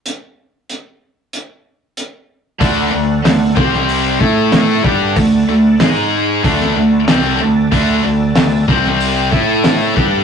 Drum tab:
HH |x---x---x---x---|o---o---o---o---|o---o---o---o---|o---o---o---o---|
SD |----------------|----o--o----o---|----o----o--o---|----o--o----o---|
BD |----------------|o-----o---o---o-|o-------o-------|o-----o---o---o-|